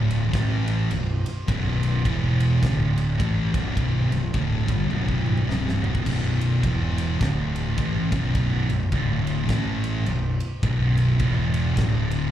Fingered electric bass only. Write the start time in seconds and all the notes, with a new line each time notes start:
Already playing: D1
0.34 A1
0.91 B0
1.48 B0
2.05 E1
2.63 D1
3.20 A1
3.54 B0
4.10 B0
4.34 D1
4.68 G1
4.90 B0
5.48 C1
5.82 B0
6.06 B0
6.63 E1
7.21 D1
7.78 A1
8.12 B0
8.69 B0
8.92 D1
9.49 A1
10.07 B0
10.63 B0
11.20 E1
11.77 D1